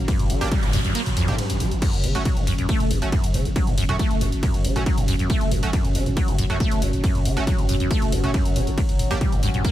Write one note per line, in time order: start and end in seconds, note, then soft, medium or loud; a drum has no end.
0.00 1.81 F#3 medium
0.00 1.81 C#4 medium
0.08 0.31 G2 medium
0.08 kick loud
0.08 closed hi-hat medium
0.08 ride medium
0.08 noise sweep medium
0.19 0.29 G1 medium
0.19 closed hi-hat medium
0.19 mid tom loud
0.30 0.40 G1 loud
0.30 0.43 D3 loud
0.30 open hi-hat loud
0.41 0.51 G1 medium
0.41 0.44 G2 medium
0.41 0.48 A#3 loud
0.41 0.48 D4 loud
0.41 0.48 G4 loud
0.41 closed hi-hat medium
0.52 0.64 G3 medium
0.52 kick loud
0.52 closed hi-hat medium
0.52 mid tom medium
0.52 ride medium
0.63 0.73 G1 medium
0.63 0.71 G2 loud
0.63 closed hi-hat medium
0.73 0.84 G1 loud
0.73 0.79 G2 loud
0.73 mid tom loud
0.73 open hi-hat loud
0.85 0.95 G1 medium
0.85 0.93 G2 medium
0.85 closed hi-hat medium
0.95 1.01 A#3 loud
0.95 closed hi-hat medium
0.95 ride medium
1.06 1.16 G1 medium
1.06 closed hi-hat medium
1.06 mid tom medium
1.17 1.27 G1 loud
1.17 1.29 F2 loud
1.17 open hi-hat loud
1.28 1.38 G1 medium
1.28 1.40 A2 loud
1.28 1.35 A#3 medium
1.28 1.35 D4 medium
1.28 1.35 G4 loud
1.28 closed hi-hat medium
1.28 mid tom loud
1.38 1.62 G2 loud
1.38 closed hi-hat medium
1.38 ride medium
1.50 1.60 G1 medium
1.50 closed hi-hat medium
1.60 1.71 G1 medium
1.60 1.73 G3 loud
1.60 mid tom medium
1.60 open hi-hat loud
1.71 1.82 G1 medium
1.71 1.77 F3 medium
1.71 closed hi-hat medium
1.82 2.05 F#2 medium
1.82 9.71 F#3 medium
1.82 9.71 C#4 medium
1.82 kick loud
1.82 closed hi-hat medium
1.82 crash medium
1.82 ride medium
1.93 2.03 F#1 medium
1.93 closed hi-hat medium
2.04 2.14 F#1 loud
2.04 2.16 C#3 loud
2.04 mid tom medium
2.04 open hi-hat loud
2.15 2.25 F#1 medium
2.15 2.18 F#2 medium
2.15 2.22 A3 loud
2.15 2.22 C#4 medium
2.15 2.22 F#4 loud
2.15 closed hi-hat medium
2.25 2.38 F#3 medium
2.25 kick loud
2.25 closed hi-hat medium
2.25 mid tom medium
2.25 ride medium
2.37 2.47 F#1 medium
2.37 2.45 F#2 medium
2.37 closed hi-hat medium
2.47 2.58 F#1 loud
2.47 2.53 F#2 loud
2.47 open hi-hat loud
2.58 2.69 F#1 medium
2.58 2.67 F#2 medium
2.58 closed hi-hat medium
2.58 mid tom medium
2.69 2.92 A3 loud
2.69 kick loud
2.69 closed hi-hat medium
2.69 ride medium
2.80 2.90 F#1 medium
2.80 closed hi-hat medium
2.80 mid tom loud
2.91 3.01 F#1 loud
2.91 3.00 F#2 medium
2.91 open hi-hat loud
3.02 3.12 F#1 medium
3.02 3.09 A3 medium
3.02 3.09 C#4 medium
3.02 3.09 F#4 loud
3.02 closed hi-hat medium
3.12 3.36 F#2 medium
3.12 kick loud
3.12 closed hi-hat medium
3.12 mid tom medium
3.12 ride medium
3.24 3.34 F#1 medium
3.24 closed hi-hat medium
3.34 3.45 F#1 loud
3.34 3.47 C#3 loud
3.34 mid tom medium
3.34 open hi-hat loud
3.45 3.56 F#1 medium
3.45 3.49 F#2 medium
3.45 closed hi-hat medium
3.56 3.69 F#3 medium
3.56 kick loud
3.56 closed hi-hat medium
3.56 ride medium
3.67 3.77 F#1 medium
3.67 3.76 F#2 loud
3.67 closed hi-hat medium
3.67 mid tom medium
3.78 3.88 F#1 loud
3.78 3.84 F#2 loud
3.78 open hi-hat loud
3.89 3.99 F#1 medium
3.89 3.97 F#2 medium
3.89 3.96 A3 loud
3.89 3.96 C#4 medium
3.89 3.96 F#4 loud
3.89 closed hi-hat medium
3.89 mid tom loud
3.99 4.23 A3 loud
3.99 kick loud
3.99 closed hi-hat medium
3.99 ride medium
4.11 4.20 F#1 medium
4.11 closed hi-hat medium
4.21 4.32 F#1 loud
4.21 4.30 F#2 medium
4.21 mid tom medium
4.21 open hi-hat loud
4.32 4.43 F#1 medium
4.32 closed hi-hat medium
4.43 4.66 F#2 medium
4.43 kick loud
4.43 closed hi-hat medium
4.43 mid tom medium
4.43 ride medium
4.54 4.64 F#1 medium
4.54 closed hi-hat medium
4.65 4.75 F#1 loud
4.65 4.77 C#3 loud
4.65 open hi-hat loud
4.76 4.86 F#1 medium
4.76 4.79 F#2 medium
4.76 4.83 A3 loud
4.76 4.83 C#4 medium
4.76 4.83 F#4 loud
4.76 closed hi-hat medium
4.76 mid tom medium
4.86 4.99 F#3 medium
4.86 kick loud
4.86 closed hi-hat medium
4.86 ride medium
4.98 5.07 F#1 medium
4.98 5.06 F#2 loud
4.98 closed hi-hat medium
4.98 mid tom loud
5.08 5.19 F#1 loud
5.08 5.14 F#2 loud
5.08 open hi-hat loud
5.19 5.30 F#1 medium
5.19 5.28 F#2 medium
5.19 closed hi-hat medium
5.30 5.53 A3 loud
5.30 kick loud
5.30 closed hi-hat medium
5.30 mid tom medium
5.30 ride medium
5.41 5.51 F#1 medium
5.41 closed hi-hat medium
5.51 5.62 F#1 loud
5.51 5.61 F#2 medium
5.51 mid tom medium
5.51 open hi-hat loud
5.63 5.73 F#1 medium
5.63 5.70 A3 loud
5.63 5.70 C#4 medium
5.63 5.70 F#4 loud
5.63 closed hi-hat medium
5.73 5.96 F#2 medium
5.73 kick loud
5.73 closed hi-hat medium
5.73 ride medium
5.84 5.94 F#1 medium
5.84 closed hi-hat medium
5.84 mid tom medium
5.95 6.06 F#1 loud
5.95 6.08 C#3 loud
5.95 open hi-hat loud
6.06 6.17 F#1 medium
6.06 6.10 F#2 medium
6.06 closed hi-hat medium
6.06 mid tom medium
6.17 6.29 F#3 medium
6.17 kick loud
6.17 closed hi-hat medium
6.17 ride medium
6.28 6.38 F#1 medium
6.28 6.37 F#2 loud
6.28 closed hi-hat medium
6.38 6.49 F#1 loud
6.38 6.45 F#2 loud
6.38 mid tom medium
6.38 open hi-hat loud
6.50 6.60 F#1 medium
6.50 6.58 F#2 medium
6.50 6.57 A3 loud
6.50 6.57 C#4 medium
6.50 6.57 F#4 loud
6.50 closed hi-hat medium
6.60 6.83 A3 loud
6.60 kick loud
6.60 closed hi-hat medium
6.60 mid tom medium
6.60 ride medium
6.71 6.81 F#1 medium
6.71 closed hi-hat medium
6.82 6.93 F#1 loud
6.82 6.91 F#2 medium
6.82 open hi-hat loud
6.93 7.03 F#1 medium
6.93 closed hi-hat medium
6.93 mid tom medium
7.04 7.27 F#2 medium
7.04 kick loud
7.04 closed hi-hat medium
7.04 ride medium
7.15 7.25 F#1 medium
7.15 closed hi-hat soft
7.15 mid tom medium
7.25 7.36 F#1 loud
7.25 7.38 C#3 loud
7.25 open hi-hat loud
7.37 7.47 F#1 medium
7.37 7.40 F#2 medium
7.37 7.44 A3 loud
7.37 7.44 C#4 medium
7.37 7.44 F#4 loud
7.37 closed hi-hat medium
7.47 7.60 F#3 medium
7.47 kick loud
7.47 closed hi-hat medium
7.47 mid tom medium
7.47 ride medium
7.58 7.68 F#1 medium
7.58 7.67 F#2 loud
7.58 closed hi-hat medium
7.69 7.80 F#1 loud
7.69 7.75 F#2 loud
7.69 mid tom medium
7.69 open hi-hat loud
7.80 7.90 F#1 medium
7.80 7.89 F#2 medium
7.80 closed hi-hat medium
7.91 8.14 A3 loud
7.91 kick loud
7.91 closed hi-hat medium
7.91 ride medium
8.02 8.12 F#1 medium
8.02 closed hi-hat medium
8.02 mid tom medium
8.12 8.23 F#1 loud
8.12 8.22 F#2 medium
8.12 open hi-hat loud
8.24 8.34 F#1 medium
8.24 8.31 A3 medium
8.24 8.31 C#4 medium
8.24 8.31 F#4 medium
8.24 closed hi-hat medium
8.24 mid tom medium
8.34 8.57 F#2 medium
8.34 kick loud
8.34 closed hi-hat medium
8.34 ride medium
8.45 8.55 F#1 medium
8.45 closed hi-hat medium
8.56 8.67 F#1 loud
8.56 8.69 C#3 loud
8.56 mid tom medium
8.56 open hi-hat loud
8.67 8.77 F#1 medium
8.67 8.71 F#2 medium
8.67 closed hi-hat medium
8.78 8.81 G2 medium
8.78 kick loud
8.78 closed hi-hat medium
8.78 ride medium
8.89 8.99 G1 medium
8.89 closed hi-hat medium
8.99 9.10 G1 loud
8.99 mid tom medium
8.99 open hi-hat loud
9.11 9.21 G1 medium
9.11 9.14 G2 medium
9.11 9.18 A#3 loud
9.11 9.18 D4 medium
9.11 9.18 G4 loud
9.11 closed hi-hat medium
9.21 9.34 G3 medium
9.21 kick loud
9.21 closed hi-hat medium
9.21 mid tom medium
9.21 ride medium
9.32 9.42 G1 medium
9.32 9.41 G2 loud
9.32 closed hi-hat medium
9.43 9.54 G1 loud
9.43 9.49 G2 loud
9.43 open hi-hat loud
9.54 9.64 G1 medium
9.54 9.63 G2 medium
9.54 closed hi-hat medium
9.54 mid tom medium
9.65 9.71 A#3 loud
9.65 kick loud
9.65 closed hi-hat medium
9.65 ride medium